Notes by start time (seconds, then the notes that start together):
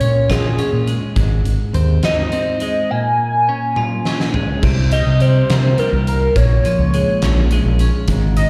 Already playing: A#2 C#5
0.01 A#2 C#4, closed hi-hat
0.30 F4 G#4, kick, snare, closed hi-hat
0.59 C#4, closed hi-hat
0.73 A#2
0.87 G#3, closed hi-hat
1.16 G#1 G#2, kick, closed hi-hat
1.45 G#1, closed hi-hat
1.73 D#2 C4, closed hi-hat
2.03 D#4 D#5, snare, closed hi-hat
2.32 C4, closed hi-hat
2.60 G#3 D#5, closed hi-hat
2.91 A#2 G#5
3.49 C#4
3.76 F4, high tom
4.05 C#4, snare
4.20 snare
4.34 G#3, floor tom
4.63 C2 C3, kick, crash
4.92 G3 D#5, closed hi-hat
5.06 C3
5.20 G3 C5, closed hi-hat
5.50 C3 A#3, snare, closed hi-hat
5.78 G3 A#4, closed hi-hat
5.92 C2
6.07 A#3 A#4, closed hi-hat
6.36 A#1 A#2 C#5, kick, closed hi-hat
6.65 F3, closed hi-hat
6.79 C#2
6.94 G#3, closed hi-hat
7.22 A#1 C#4, snare, closed hi-hat
7.51 G#3, closed hi-hat
7.65 A#1
7.79 C#4, closed hi-hat
8.08 G#1 G#2, kick, closed hi-hat
8.37 D#3 D#5, closed hi-hat